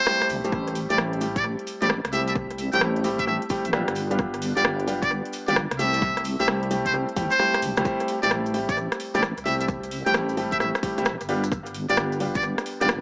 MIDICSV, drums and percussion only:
0, 0, Header, 1, 2, 480
1, 0, Start_track
1, 0, Key_signature, 0, "minor"
1, 0, Tempo, 458015
1, 549, Time_signature, 4, 2, 24, 8
1, 13639, End_track
2, 0, Start_track
2, 0, Title_t, "Drums"
2, 70, Note_on_c, 9, 37, 127
2, 76, Note_on_c, 9, 69, 41
2, 175, Note_off_c, 9, 37, 0
2, 180, Note_off_c, 9, 69, 0
2, 227, Note_on_c, 9, 37, 68
2, 227, Note_on_c, 9, 42, 52
2, 306, Note_on_c, 9, 69, 102
2, 311, Note_on_c, 9, 46, 103
2, 331, Note_off_c, 9, 37, 0
2, 331, Note_off_c, 9, 42, 0
2, 411, Note_off_c, 9, 69, 0
2, 415, Note_off_c, 9, 46, 0
2, 465, Note_on_c, 9, 69, 58
2, 467, Note_on_c, 9, 42, 63
2, 549, Note_on_c, 9, 36, 124
2, 551, Note_off_c, 9, 69, 0
2, 551, Note_on_c, 9, 69, 38
2, 572, Note_off_c, 9, 42, 0
2, 653, Note_off_c, 9, 36, 0
2, 656, Note_off_c, 9, 69, 0
2, 707, Note_on_c, 9, 42, 53
2, 789, Note_on_c, 9, 46, 107
2, 791, Note_on_c, 9, 69, 95
2, 812, Note_off_c, 9, 42, 0
2, 894, Note_off_c, 9, 46, 0
2, 896, Note_off_c, 9, 69, 0
2, 940, Note_on_c, 9, 69, 56
2, 946, Note_on_c, 9, 42, 71
2, 1028, Note_off_c, 9, 69, 0
2, 1028, Note_on_c, 9, 69, 41
2, 1029, Note_on_c, 9, 37, 123
2, 1050, Note_off_c, 9, 42, 0
2, 1133, Note_off_c, 9, 69, 0
2, 1134, Note_off_c, 9, 37, 0
2, 1186, Note_on_c, 9, 42, 37
2, 1267, Note_on_c, 9, 69, 99
2, 1269, Note_on_c, 9, 46, 102
2, 1291, Note_off_c, 9, 42, 0
2, 1372, Note_off_c, 9, 69, 0
2, 1374, Note_off_c, 9, 46, 0
2, 1425, Note_on_c, 9, 36, 104
2, 1426, Note_on_c, 9, 42, 66
2, 1427, Note_on_c, 9, 69, 54
2, 1503, Note_off_c, 9, 69, 0
2, 1503, Note_on_c, 9, 69, 37
2, 1530, Note_off_c, 9, 36, 0
2, 1531, Note_off_c, 9, 42, 0
2, 1608, Note_off_c, 9, 69, 0
2, 1667, Note_on_c, 9, 42, 36
2, 1749, Note_on_c, 9, 46, 104
2, 1752, Note_on_c, 9, 69, 98
2, 1771, Note_off_c, 9, 42, 0
2, 1854, Note_off_c, 9, 46, 0
2, 1857, Note_off_c, 9, 69, 0
2, 1903, Note_on_c, 9, 69, 56
2, 1905, Note_on_c, 9, 42, 67
2, 1984, Note_off_c, 9, 69, 0
2, 1984, Note_on_c, 9, 69, 36
2, 1988, Note_on_c, 9, 37, 122
2, 2010, Note_off_c, 9, 42, 0
2, 2088, Note_off_c, 9, 69, 0
2, 2093, Note_off_c, 9, 37, 0
2, 2146, Note_on_c, 9, 37, 66
2, 2146, Note_on_c, 9, 42, 54
2, 2228, Note_on_c, 9, 69, 98
2, 2229, Note_on_c, 9, 46, 104
2, 2250, Note_off_c, 9, 37, 0
2, 2250, Note_off_c, 9, 42, 0
2, 2333, Note_off_c, 9, 69, 0
2, 2334, Note_off_c, 9, 46, 0
2, 2386, Note_on_c, 9, 42, 66
2, 2389, Note_on_c, 9, 69, 48
2, 2465, Note_off_c, 9, 69, 0
2, 2465, Note_on_c, 9, 69, 39
2, 2468, Note_on_c, 9, 36, 121
2, 2491, Note_off_c, 9, 42, 0
2, 2570, Note_off_c, 9, 69, 0
2, 2573, Note_off_c, 9, 36, 0
2, 2625, Note_on_c, 9, 42, 55
2, 2708, Note_on_c, 9, 46, 108
2, 2708, Note_on_c, 9, 69, 88
2, 2730, Note_off_c, 9, 42, 0
2, 2813, Note_off_c, 9, 46, 0
2, 2813, Note_off_c, 9, 69, 0
2, 2854, Note_on_c, 9, 69, 52
2, 2865, Note_on_c, 9, 42, 73
2, 2944, Note_off_c, 9, 69, 0
2, 2944, Note_on_c, 9, 69, 38
2, 2947, Note_on_c, 9, 37, 115
2, 2969, Note_off_c, 9, 42, 0
2, 3049, Note_off_c, 9, 69, 0
2, 3052, Note_off_c, 9, 37, 0
2, 3104, Note_on_c, 9, 42, 39
2, 3187, Note_on_c, 9, 46, 105
2, 3187, Note_on_c, 9, 69, 104
2, 3209, Note_off_c, 9, 42, 0
2, 3292, Note_off_c, 9, 46, 0
2, 3292, Note_off_c, 9, 69, 0
2, 3344, Note_on_c, 9, 36, 60
2, 3345, Note_on_c, 9, 42, 69
2, 3348, Note_on_c, 9, 69, 55
2, 3434, Note_off_c, 9, 69, 0
2, 3434, Note_on_c, 9, 69, 39
2, 3449, Note_off_c, 9, 36, 0
2, 3449, Note_off_c, 9, 42, 0
2, 3538, Note_off_c, 9, 69, 0
2, 3585, Note_on_c, 9, 42, 39
2, 3663, Note_on_c, 9, 69, 88
2, 3668, Note_on_c, 9, 36, 101
2, 3668, Note_on_c, 9, 46, 105
2, 3690, Note_off_c, 9, 42, 0
2, 3768, Note_off_c, 9, 69, 0
2, 3773, Note_off_c, 9, 36, 0
2, 3773, Note_off_c, 9, 46, 0
2, 3823, Note_on_c, 9, 69, 52
2, 3825, Note_on_c, 9, 42, 69
2, 3909, Note_on_c, 9, 37, 121
2, 3913, Note_off_c, 9, 69, 0
2, 3913, Note_on_c, 9, 69, 41
2, 3930, Note_off_c, 9, 42, 0
2, 4014, Note_off_c, 9, 37, 0
2, 4018, Note_off_c, 9, 69, 0
2, 4066, Note_on_c, 9, 37, 67
2, 4066, Note_on_c, 9, 42, 56
2, 4143, Note_on_c, 9, 69, 86
2, 4150, Note_on_c, 9, 46, 111
2, 4171, Note_off_c, 9, 37, 0
2, 4171, Note_off_c, 9, 42, 0
2, 4247, Note_off_c, 9, 69, 0
2, 4255, Note_off_c, 9, 46, 0
2, 4305, Note_on_c, 9, 69, 49
2, 4307, Note_on_c, 9, 42, 71
2, 4387, Note_off_c, 9, 69, 0
2, 4387, Note_on_c, 9, 69, 38
2, 4388, Note_on_c, 9, 36, 122
2, 4412, Note_off_c, 9, 42, 0
2, 4491, Note_off_c, 9, 69, 0
2, 4493, Note_off_c, 9, 36, 0
2, 4547, Note_on_c, 9, 42, 56
2, 4630, Note_on_c, 9, 46, 113
2, 4633, Note_on_c, 9, 69, 90
2, 4652, Note_off_c, 9, 42, 0
2, 4735, Note_off_c, 9, 46, 0
2, 4738, Note_off_c, 9, 69, 0
2, 4787, Note_on_c, 9, 42, 73
2, 4791, Note_on_c, 9, 69, 48
2, 4867, Note_off_c, 9, 69, 0
2, 4867, Note_on_c, 9, 69, 36
2, 4870, Note_on_c, 9, 37, 115
2, 4891, Note_off_c, 9, 42, 0
2, 4972, Note_off_c, 9, 69, 0
2, 4975, Note_off_c, 9, 37, 0
2, 5026, Note_on_c, 9, 42, 39
2, 5110, Note_on_c, 9, 46, 110
2, 5111, Note_on_c, 9, 69, 90
2, 5131, Note_off_c, 9, 42, 0
2, 5215, Note_off_c, 9, 46, 0
2, 5216, Note_off_c, 9, 69, 0
2, 5265, Note_on_c, 9, 36, 99
2, 5267, Note_on_c, 9, 42, 69
2, 5269, Note_on_c, 9, 69, 48
2, 5352, Note_off_c, 9, 69, 0
2, 5352, Note_on_c, 9, 69, 34
2, 5370, Note_off_c, 9, 36, 0
2, 5372, Note_off_c, 9, 42, 0
2, 5456, Note_off_c, 9, 69, 0
2, 5507, Note_on_c, 9, 42, 39
2, 5585, Note_on_c, 9, 69, 82
2, 5590, Note_on_c, 9, 46, 109
2, 5611, Note_off_c, 9, 42, 0
2, 5690, Note_off_c, 9, 69, 0
2, 5695, Note_off_c, 9, 46, 0
2, 5739, Note_on_c, 9, 69, 51
2, 5747, Note_on_c, 9, 42, 69
2, 5828, Note_off_c, 9, 69, 0
2, 5828, Note_on_c, 9, 69, 43
2, 5830, Note_on_c, 9, 37, 114
2, 5852, Note_off_c, 9, 42, 0
2, 5933, Note_off_c, 9, 69, 0
2, 5935, Note_off_c, 9, 37, 0
2, 5988, Note_on_c, 9, 37, 66
2, 5988, Note_on_c, 9, 42, 58
2, 6070, Note_on_c, 9, 46, 111
2, 6071, Note_on_c, 9, 69, 84
2, 6092, Note_off_c, 9, 37, 0
2, 6092, Note_off_c, 9, 42, 0
2, 6175, Note_off_c, 9, 46, 0
2, 6176, Note_off_c, 9, 69, 0
2, 6216, Note_on_c, 9, 69, 52
2, 6226, Note_on_c, 9, 42, 72
2, 6309, Note_on_c, 9, 36, 127
2, 6313, Note_off_c, 9, 69, 0
2, 6313, Note_on_c, 9, 69, 38
2, 6331, Note_off_c, 9, 42, 0
2, 6414, Note_off_c, 9, 36, 0
2, 6418, Note_off_c, 9, 69, 0
2, 6467, Note_on_c, 9, 37, 54
2, 6467, Note_on_c, 9, 42, 57
2, 6543, Note_on_c, 9, 69, 89
2, 6550, Note_on_c, 9, 46, 120
2, 6571, Note_off_c, 9, 37, 0
2, 6571, Note_off_c, 9, 42, 0
2, 6648, Note_off_c, 9, 69, 0
2, 6654, Note_off_c, 9, 46, 0
2, 6702, Note_on_c, 9, 69, 56
2, 6707, Note_on_c, 9, 46, 69
2, 6783, Note_off_c, 9, 69, 0
2, 6783, Note_on_c, 9, 69, 39
2, 6790, Note_on_c, 9, 37, 123
2, 6812, Note_off_c, 9, 46, 0
2, 6888, Note_off_c, 9, 69, 0
2, 6895, Note_off_c, 9, 37, 0
2, 6946, Note_on_c, 9, 42, 38
2, 7029, Note_on_c, 9, 46, 111
2, 7031, Note_on_c, 9, 69, 98
2, 7051, Note_off_c, 9, 42, 0
2, 7134, Note_off_c, 9, 46, 0
2, 7136, Note_off_c, 9, 69, 0
2, 7185, Note_on_c, 9, 36, 61
2, 7186, Note_on_c, 9, 42, 69
2, 7189, Note_on_c, 9, 69, 47
2, 7272, Note_off_c, 9, 69, 0
2, 7272, Note_on_c, 9, 69, 40
2, 7290, Note_off_c, 9, 36, 0
2, 7291, Note_off_c, 9, 42, 0
2, 7377, Note_off_c, 9, 69, 0
2, 7427, Note_on_c, 9, 42, 37
2, 7508, Note_on_c, 9, 36, 102
2, 7508, Note_on_c, 9, 69, 97
2, 7509, Note_on_c, 9, 46, 114
2, 7532, Note_off_c, 9, 42, 0
2, 7613, Note_off_c, 9, 36, 0
2, 7613, Note_off_c, 9, 69, 0
2, 7614, Note_off_c, 9, 46, 0
2, 7650, Note_on_c, 9, 69, 53
2, 7666, Note_on_c, 9, 42, 68
2, 7750, Note_on_c, 9, 37, 63
2, 7755, Note_off_c, 9, 69, 0
2, 7756, Note_on_c, 9, 69, 35
2, 7771, Note_off_c, 9, 42, 0
2, 7855, Note_off_c, 9, 37, 0
2, 7860, Note_off_c, 9, 69, 0
2, 7906, Note_on_c, 9, 37, 67
2, 7906, Note_on_c, 9, 42, 57
2, 7987, Note_on_c, 9, 69, 101
2, 7989, Note_on_c, 9, 46, 112
2, 8011, Note_off_c, 9, 37, 0
2, 8011, Note_off_c, 9, 42, 0
2, 8092, Note_off_c, 9, 69, 0
2, 8094, Note_off_c, 9, 46, 0
2, 8136, Note_on_c, 9, 69, 55
2, 8147, Note_on_c, 9, 37, 87
2, 8147, Note_on_c, 9, 42, 69
2, 8227, Note_off_c, 9, 69, 0
2, 8227, Note_on_c, 9, 69, 70
2, 8229, Note_on_c, 9, 36, 124
2, 8252, Note_off_c, 9, 37, 0
2, 8252, Note_off_c, 9, 42, 0
2, 8332, Note_off_c, 9, 69, 0
2, 8334, Note_off_c, 9, 36, 0
2, 8383, Note_on_c, 9, 69, 35
2, 8386, Note_on_c, 9, 42, 53
2, 8470, Note_on_c, 9, 46, 114
2, 8488, Note_off_c, 9, 69, 0
2, 8491, Note_off_c, 9, 42, 0
2, 8575, Note_off_c, 9, 46, 0
2, 8625, Note_on_c, 9, 69, 86
2, 8626, Note_on_c, 9, 42, 69
2, 8709, Note_off_c, 9, 69, 0
2, 8709, Note_on_c, 9, 37, 120
2, 8709, Note_on_c, 9, 69, 66
2, 8731, Note_off_c, 9, 42, 0
2, 8813, Note_off_c, 9, 69, 0
2, 8814, Note_off_c, 9, 37, 0
2, 8867, Note_on_c, 9, 69, 37
2, 8868, Note_on_c, 9, 42, 37
2, 8950, Note_on_c, 9, 46, 99
2, 8972, Note_off_c, 9, 42, 0
2, 8972, Note_off_c, 9, 69, 0
2, 9055, Note_off_c, 9, 46, 0
2, 9106, Note_on_c, 9, 36, 104
2, 9107, Note_on_c, 9, 42, 66
2, 9108, Note_on_c, 9, 69, 83
2, 9191, Note_off_c, 9, 69, 0
2, 9191, Note_on_c, 9, 69, 63
2, 9211, Note_off_c, 9, 36, 0
2, 9212, Note_off_c, 9, 42, 0
2, 9296, Note_off_c, 9, 69, 0
2, 9348, Note_on_c, 9, 37, 70
2, 9348, Note_on_c, 9, 42, 36
2, 9348, Note_on_c, 9, 69, 42
2, 9430, Note_on_c, 9, 46, 114
2, 9452, Note_off_c, 9, 37, 0
2, 9452, Note_off_c, 9, 42, 0
2, 9452, Note_off_c, 9, 69, 0
2, 9535, Note_off_c, 9, 46, 0
2, 9585, Note_on_c, 9, 69, 73
2, 9587, Note_on_c, 9, 37, 32
2, 9587, Note_on_c, 9, 42, 67
2, 9669, Note_off_c, 9, 37, 0
2, 9669, Note_on_c, 9, 37, 119
2, 9670, Note_off_c, 9, 69, 0
2, 9670, Note_on_c, 9, 69, 67
2, 9692, Note_off_c, 9, 42, 0
2, 9774, Note_off_c, 9, 37, 0
2, 9775, Note_off_c, 9, 69, 0
2, 9825, Note_on_c, 9, 69, 40
2, 9826, Note_on_c, 9, 42, 52
2, 9909, Note_on_c, 9, 46, 100
2, 9930, Note_off_c, 9, 69, 0
2, 9931, Note_off_c, 9, 42, 0
2, 10013, Note_off_c, 9, 46, 0
2, 10066, Note_on_c, 9, 42, 69
2, 10068, Note_on_c, 9, 69, 85
2, 10147, Note_off_c, 9, 69, 0
2, 10147, Note_on_c, 9, 69, 74
2, 10149, Note_on_c, 9, 36, 127
2, 10171, Note_off_c, 9, 42, 0
2, 10252, Note_off_c, 9, 69, 0
2, 10254, Note_off_c, 9, 36, 0
2, 10306, Note_on_c, 9, 42, 52
2, 10312, Note_on_c, 9, 69, 41
2, 10389, Note_on_c, 9, 46, 108
2, 10411, Note_off_c, 9, 42, 0
2, 10417, Note_off_c, 9, 69, 0
2, 10494, Note_off_c, 9, 46, 0
2, 10547, Note_on_c, 9, 42, 66
2, 10549, Note_on_c, 9, 69, 88
2, 10627, Note_off_c, 9, 69, 0
2, 10627, Note_on_c, 9, 69, 63
2, 10630, Note_on_c, 9, 37, 127
2, 10652, Note_off_c, 9, 42, 0
2, 10732, Note_off_c, 9, 69, 0
2, 10735, Note_off_c, 9, 37, 0
2, 10782, Note_on_c, 9, 69, 41
2, 10786, Note_on_c, 9, 42, 36
2, 10870, Note_on_c, 9, 46, 93
2, 10887, Note_off_c, 9, 69, 0
2, 10891, Note_off_c, 9, 42, 0
2, 10975, Note_off_c, 9, 46, 0
2, 11026, Note_on_c, 9, 36, 65
2, 11027, Note_on_c, 9, 42, 65
2, 11027, Note_on_c, 9, 69, 77
2, 11111, Note_on_c, 9, 37, 69
2, 11115, Note_off_c, 9, 69, 0
2, 11115, Note_on_c, 9, 69, 66
2, 11131, Note_off_c, 9, 36, 0
2, 11132, Note_off_c, 9, 42, 0
2, 11215, Note_off_c, 9, 37, 0
2, 11220, Note_off_c, 9, 69, 0
2, 11264, Note_on_c, 9, 69, 43
2, 11267, Note_on_c, 9, 37, 71
2, 11267, Note_on_c, 9, 42, 36
2, 11349, Note_on_c, 9, 36, 112
2, 11350, Note_on_c, 9, 46, 111
2, 11369, Note_off_c, 9, 69, 0
2, 11372, Note_off_c, 9, 37, 0
2, 11372, Note_off_c, 9, 42, 0
2, 11454, Note_off_c, 9, 36, 0
2, 11454, Note_off_c, 9, 46, 0
2, 11506, Note_on_c, 9, 37, 34
2, 11506, Note_on_c, 9, 42, 64
2, 11509, Note_on_c, 9, 69, 89
2, 11582, Note_off_c, 9, 69, 0
2, 11582, Note_on_c, 9, 69, 71
2, 11589, Note_off_c, 9, 37, 0
2, 11589, Note_on_c, 9, 37, 127
2, 11611, Note_off_c, 9, 42, 0
2, 11687, Note_off_c, 9, 69, 0
2, 11694, Note_off_c, 9, 37, 0
2, 11745, Note_on_c, 9, 42, 52
2, 11746, Note_on_c, 9, 69, 42
2, 11829, Note_on_c, 9, 46, 95
2, 11850, Note_off_c, 9, 42, 0
2, 11851, Note_off_c, 9, 69, 0
2, 11933, Note_off_c, 9, 46, 0
2, 11985, Note_on_c, 9, 37, 33
2, 11985, Note_on_c, 9, 42, 63
2, 11989, Note_on_c, 9, 69, 79
2, 12069, Note_on_c, 9, 36, 127
2, 12073, Note_off_c, 9, 69, 0
2, 12073, Note_on_c, 9, 69, 78
2, 12090, Note_off_c, 9, 37, 0
2, 12090, Note_off_c, 9, 42, 0
2, 12174, Note_off_c, 9, 36, 0
2, 12178, Note_off_c, 9, 69, 0
2, 12219, Note_on_c, 9, 69, 47
2, 12225, Note_on_c, 9, 42, 53
2, 12309, Note_on_c, 9, 46, 104
2, 12323, Note_off_c, 9, 69, 0
2, 12330, Note_off_c, 9, 42, 0
2, 12413, Note_off_c, 9, 46, 0
2, 12463, Note_on_c, 9, 69, 79
2, 12465, Note_on_c, 9, 42, 68
2, 12541, Note_off_c, 9, 69, 0
2, 12541, Note_on_c, 9, 69, 74
2, 12548, Note_on_c, 9, 37, 127
2, 12569, Note_off_c, 9, 42, 0
2, 12646, Note_off_c, 9, 69, 0
2, 12653, Note_off_c, 9, 37, 0
2, 12705, Note_on_c, 9, 42, 34
2, 12708, Note_on_c, 9, 69, 41
2, 12788, Note_on_c, 9, 46, 92
2, 12810, Note_off_c, 9, 42, 0
2, 12813, Note_off_c, 9, 69, 0
2, 12892, Note_off_c, 9, 46, 0
2, 12942, Note_on_c, 9, 69, 86
2, 12944, Note_on_c, 9, 42, 65
2, 12946, Note_on_c, 9, 36, 113
2, 13017, Note_off_c, 9, 69, 0
2, 13017, Note_on_c, 9, 69, 68
2, 13049, Note_off_c, 9, 42, 0
2, 13050, Note_off_c, 9, 36, 0
2, 13122, Note_off_c, 9, 69, 0
2, 13185, Note_on_c, 9, 37, 68
2, 13185, Note_on_c, 9, 42, 35
2, 13189, Note_on_c, 9, 69, 41
2, 13267, Note_on_c, 9, 46, 107
2, 13289, Note_off_c, 9, 37, 0
2, 13289, Note_off_c, 9, 42, 0
2, 13293, Note_off_c, 9, 69, 0
2, 13371, Note_off_c, 9, 46, 0
2, 13426, Note_on_c, 9, 37, 32
2, 13426, Note_on_c, 9, 42, 64
2, 13428, Note_on_c, 9, 69, 83
2, 13503, Note_off_c, 9, 69, 0
2, 13503, Note_on_c, 9, 69, 71
2, 13508, Note_off_c, 9, 37, 0
2, 13508, Note_on_c, 9, 37, 125
2, 13530, Note_off_c, 9, 42, 0
2, 13608, Note_off_c, 9, 69, 0
2, 13612, Note_off_c, 9, 37, 0
2, 13639, End_track
0, 0, End_of_file